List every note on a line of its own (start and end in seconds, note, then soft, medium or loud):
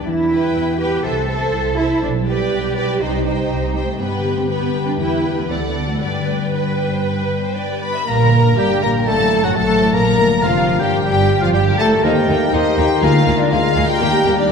0.00 1.06 G3 soft
0.00 0.22 B3 soft
0.00 0.39 G4 soft
0.06 0.49 E2 medium
0.06 1.06 E3 soft
0.06 0.76 E4 medium
0.24 0.55 B3 soft
0.31 0.79 B4 soft
0.31 0.78 B4 soft
0.31 0.78 G5 soft
0.40 0.87 G4 soft
0.55 0.98 E2 medium
0.55 1.06 B3 soft
0.73 1.06 B4 soft
0.80 1.04 G4 medium
0.80 1.03 B4 soft
0.80 1.04 B4 soft
0.80 1.03 G5 soft
0.88 1.06 G4 soft
1.03 1.47 C2 medium
1.03 2.04 C3 medium
1.03 1.77 A4 medium
1.03 1.28 A4 soft
1.03 1.27 C5 soft
1.03 1.27 E5 soft
1.21 2.04 A3 soft
1.28 1.77 A4 soft
1.28 1.76 C5 soft
1.28 1.75 E5 soft
1.37 2.04 C4 soft
1.52 1.96 C2 soft
1.52 1.85 E4 soft
1.70 2.05 A4 soft
1.77 2.02 E4 medium
1.77 2.02 A4 soft
1.77 2.02 C5 soft
1.77 2.01 E5 soft
1.86 2.04 E4 soft
2.02 2.46 B1 medium
2.02 3.03 B2 soft
2.02 2.10 D4 medium
2.20 3.17 G3 soft
2.27 2.99 G4 medium
2.27 2.75 B4 soft
2.27 2.75 D5 soft
2.27 2.75 G5 soft
2.36 3.03 B3 soft
2.52 2.95 B1 medium
2.52 2.84 D4 soft
2.68 3.49 G4 soft
2.76 3.00 B4 soft
2.76 3.00 D5 soft
2.76 3.01 G5 soft
2.85 3.03 D4 soft
3.00 3.45 C2 medium
3.00 4.02 C3 soft
3.00 3.24 D#4 medium
3.00 3.25 G4 soft
3.00 3.24 C5 soft
3.00 3.25 G5 soft
3.18 4.32 G3 soft
3.25 3.74 D#4 medium
3.25 3.74 G4 soft
3.25 3.74 C5 soft
3.25 3.74 G5 soft
3.34 3.65 C4 soft
3.50 3.93 C2 soft
3.50 3.82 G4 soft
3.67 4.01 C4 soft
3.75 3.87 G3 medium
3.75 3.99 G4 soft
3.75 3.99 C5 soft
3.75 3.98 G5 soft
3.83 4.66 G4 soft
3.88 4.00 A3 medium
3.99 5.01 G2 soft
3.99 4.95 G2 soft
3.99 4.36 B3 medium
3.99 4.46 G4 medium
3.99 4.45 B4 soft
3.99 4.45 G5 soft
4.16 5.01 D3 soft
4.33 5.52 G3 soft
4.33 4.42 C4 medium
4.49 4.85 B3 medium
4.49 4.82 B3 soft
4.49 4.99 G4 soft
4.49 4.98 B4 soft
4.49 4.98 G5 soft
4.67 5.33 G4 soft
4.84 5.16 B3 soft
4.84 4.99 D4 medium
4.99 5.49 E2 soft
4.99 5.52 E3 soft
4.99 5.36 E4 medium
4.99 5.49 G4 soft
4.99 5.49 B4 soft
4.99 5.49 G5 soft
5.17 5.33 B3 soft
5.34 5.50 A3 medium
5.34 5.53 B3 soft
5.34 5.53 G4 soft
5.49 6.00 D2 soft
5.49 6.04 D3 soft
5.49 5.88 B3 soft
5.49 6.01 A4 soft
5.49 6.00 D5 soft
5.49 6.00 F#5 soft
5.68 5.84 D4 soft
5.85 6.52 D4 soft
5.85 6.04 F#4 soft
5.89 6.01 A3 soft
6.01 7.87 G2 soft
6.01 7.03 G2 soft
6.01 7.82 G3 medium
6.01 7.80 B4 soft
6.01 6.47 D5 soft
6.01 7.82 G5 soft
6.19 7.20 D3 soft
6.36 7.37 B3 soft
6.53 6.86 D4 soft
6.53 6.89 B4 soft
6.71 7.71 G4 soft
6.87 7.54 D4 soft
6.91 7.04 C5 soft
7.04 8.06 G2 soft
7.04 7.42 B4 soft
7.21 8.09 D3 soft
7.38 8.09 B3 soft
7.43 7.56 C5 soft
7.55 7.89 D4 soft
7.55 7.95 D5 soft
7.73 8.56 G4 soft
7.81 8.05 B4 soft
7.81 8.05 B5 medium
7.81 8.06 B5 soft
7.90 8.44 D4 soft
7.94 8.07 E5 soft
8.07 8.54 A#1 medium
8.07 9.09 G2 soft
8.07 8.54 A#2 medium
8.07 8.54 A#3 medium
8.07 8.60 A#3 medium
8.07 8.54 A#4 medium
8.07 8.57 A#4 medium
8.07 8.58 A#5 medium
8.07 8.54 A#5 medium
8.07 8.58 A#5 medium
8.20 9.09 D3 soft
8.32 9.09 A#3 soft
8.45 9.43 D4 soft
8.57 8.82 G1 soft
8.57 8.82 G2 medium
8.57 8.82 G3 medium
8.57 8.85 G3 medium
8.57 8.82 G4 medium
8.57 9.09 G4 soft
8.57 8.84 G4 soft
8.57 8.82 G5 medium
8.57 8.83 G5 medium
8.70 9.09 A#4 soft
8.82 9.07 A#1 medium
8.82 9.07 A#2 medium
8.82 9.06 A#3 medium
8.82 9.09 A#3 medium
8.82 8.90 A#4 medium
8.82 9.08 A#4 medium
8.82 9.07 A#4 medium
8.82 9.82 D5 soft
8.82 8.90 A#5 medium
8.82 9.09 A#5 medium
8.82 8.90 A#5 medium
8.95 9.09 G5 soft
9.06 9.44 A1 medium
9.06 10.09 F#2 soft
9.06 9.44 A2 medium
9.06 9.44 A3 medium
9.06 9.43 A3 medium
9.06 9.46 A4 medium
9.06 9.44 A4 medium
9.06 9.43 A5 medium
9.06 9.45 A5 medium
9.06 9.44 A5 medium
9.19 10.09 F#3 soft
9.32 10.09 C4 soft
9.44 9.49 F#2 medium
9.44 9.56 F#3 medium
9.44 9.58 F#3 medium
9.44 10.43 D4 soft
9.44 9.49 F#4 medium
9.44 9.59 F#4 medium
9.44 9.57 F#4 soft
9.44 9.56 F#5 soft
9.44 9.57 F#5 medium
9.44 9.57 F#5 soft
9.56 9.94 A1 medium
9.56 9.93 A2 medium
9.56 9.93 A3 medium
9.56 9.96 A3 medium
9.56 9.93 A4 medium
9.56 10.09 A4 soft
9.56 9.93 A5 medium
9.56 9.94 A5 medium
9.56 9.96 A5 medium
9.70 10.09 C5 soft
9.83 10.79 D5 soft
9.94 10.44 A#1 medium
9.94 10.44 A#2 medium
9.94 10.45 A#3 medium
9.94 10.44 A#3 medium
9.94 10.45 A#4 medium
9.94 10.44 A#4 medium
9.94 10.43 A#4 medium
9.94 10.44 A#5 medium
9.94 10.43 A#5 medium
9.94 10.44 A#5 medium
10.07 12.06 G2 soft
10.20 12.06 D3 soft
10.32 12.15 A#3 soft
10.42 10.80 F1 medium
10.42 10.80 F2 medium
10.42 10.80 F3 medium
10.42 10.83 F3 medium
10.42 11.89 D4 soft
10.42 10.82 F4 soft
10.42 10.81 F4 soft
10.42 10.80 F4 medium
10.42 10.79 F5 medium
10.42 10.81 F5 medium
10.56 11.77 G4 soft
10.69 11.65 A#4 soft
10.80 11.04 G1 soft
10.80 11.03 G2 medium
10.80 11.04 G3 medium
10.80 11.03 G3 medium
10.80 11.05 G4 soft
10.80 11.04 G4 soft
10.80 11.05 G4 medium
10.80 11.04 D5 soft
10.80 10.91 G5 soft
10.80 11.05 G5 medium
10.80 11.06 G5 medium
10.93 11.16 G5 medium
11.04 11.42 G1 medium
11.04 11.41 G2 medium
11.04 11.41 G3 medium
11.04 11.42 G4 medium
11.04 11.28 D5 soft
11.04 11.40 G5 medium
11.04 11.42 G5 medium
11.17 11.40 G5 soft
11.30 11.53 D5 soft
11.41 11.54 F2 medium
11.41 11.53 F3 medium
11.41 11.55 F3 medium
11.41 11.48 F4 medium
11.41 11.54 F4 medium
11.41 11.49 F4 medium
11.41 11.47 F5 medium
11.41 11.55 F5 soft
11.41 11.48 F5 medium
11.41 13.04 G5 soft
11.54 11.79 G1 medium
11.54 11.79 G2 medium
11.54 11.65 G3 medium
11.54 11.79 G3 medium
11.54 11.79 G4 medium
11.54 11.66 G4 medium
11.54 11.79 G4 medium
11.54 12.06 D5 soft
11.54 11.77 G5 medium
11.54 11.62 G5 medium
11.54 11.80 G5 medium
11.67 12.40 A#4 soft
11.78 12.03 A1 medium
11.78 12.03 A2 medium
11.78 12.04 A3 medium
11.78 12.03 A3 medium
11.78 13.04 G4 medium
11.78 12.04 A4 medium
11.78 11.91 A4 medium
11.78 12.04 A4 medium
11.78 12.02 A5 medium
11.78 11.87 A5 medium
11.78 12.04 A5 medium
11.91 12.06 D4 soft
12.03 12.11 D#2 soft
12.03 12.12 D#2 medium
12.03 13.04 D#3 soft
12.03 12.21 A#3 medium
12.03 12.13 A#3 medium
12.03 12.30 C4 medium
12.03 12.21 D#4 medium
12.03 12.13 D#4 medium
12.03 12.50 D#4 medium
12.03 12.53 G4 medium
12.03 12.49 A#4 medium
12.03 12.52 G5 medium
12.03 12.54 G5 medium
12.16 13.26 A#3 soft
12.28 12.36 D#2 medium
12.28 13.02 A#3 medium
12.28 12.37 A#3 medium
12.28 12.52 D#4 soft
12.28 12.37 D#4 soft
12.41 13.51 A#4 soft
12.53 12.61 D#2 medium
12.53 12.61 A#3 soft
12.53 12.61 D#4 soft
12.53 12.78 D#4 medium
12.53 13.05 D#4 medium
12.53 13.02 G4 medium
12.53 13.05 C5 medium
12.53 12.77 D#5 medium
12.53 12.78 D#5 medium
12.65 12.89 D#5 medium
12.77 12.85 D#2 medium
12.77 12.85 D#2 soft
12.77 12.86 A#3 soft
12.77 12.86 D#4 soft
12.77 13.02 G4 medium
12.77 13.03 G5 medium
12.77 13.88 A#5 soft
12.90 13.04 D#5 soft
13.02 13.10 D2 medium
13.02 14.03 D3 medium
13.02 13.72 D3 medium
13.02 13.20 A#3 medium
13.02 13.11 A#3 medium
13.02 13.54 A#3 medium
13.02 13.38 F4 medium
13.02 13.51 F4 medium
13.02 13.11 G#4 medium
13.02 13.20 G#4 medium
13.02 14.00 A#4 medium
13.02 13.38 F5 medium
13.02 13.40 F5 medium
13.15 14.03 G#3 soft
13.26 13.34 D2 medium
13.26 13.35 D2 medium
13.26 13.35 A#3 medium
13.26 14.52 A#3 medium
13.26 13.35 G#4 soft
13.39 13.51 D4 medium
13.39 13.64 G#4 soft
13.39 13.52 D5 medium
13.51 13.59 D2 medium
13.51 13.60 D2 medium
13.51 14.03 G#3 medium
13.51 13.59 A#3 medium
13.51 13.88 F4 medium
13.51 14.02 F4 medium
13.51 13.60 G#4 soft
13.51 14.49 A#4 soft
13.51 13.88 F5 medium
13.51 13.89 F5 medium
13.65 14.03 G#4 soft
13.76 13.84 D2 medium
13.76 13.85 D2 medium
13.76 13.84 A#3 medium
13.76 13.84 G#4 medium
13.76 14.03 G#5 medium
13.88 14.37 G4 medium
13.88 14.37 G5 medium
13.88 14.16 G5 medium
13.88 14.52 A#5 medium
14.01 14.09 D#2 medium
14.01 14.52 D#3 medium
14.01 14.52 G3 medium
14.01 14.09 A#3 medium
14.01 14.18 A#3 medium
14.01 14.52 D#4 medium
14.01 14.09 G4 medium
14.01 14.18 G4 medium
14.01 14.49 A#4 medium
14.13 14.52 D#4 soft
14.25 14.33 D#2 medium
14.25 14.34 D#2 medium
14.25 14.52 G3 soft
14.25 14.34 A#3 medium
14.25 14.34 G4 medium
14.38 14.52 D4 medium
14.38 14.52 G4 medium
14.38 14.52 D5 medium